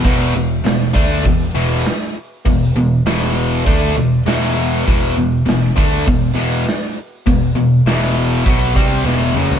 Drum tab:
CC |x---------------|----------------|----------------|----------------|
HH |--o-o-o-o-o-o-o-|o-o-o-o-o-o-o-o-|o-o-o-o-o-o-o-o-|o-o-o-o-o-o-----|
SD |----o-------o---|----o-----o-o---|----o-------o---|----o-------o---|
T1 |----------------|----------------|----------------|-------------o--|
T2 |----------------|----------------|----------------|--------------o-|
FT |----------------|----------------|----------------|---------------o|
BD |o-----o-o-------|o-------o-------|o-----o-o-------|o-------o-o-----|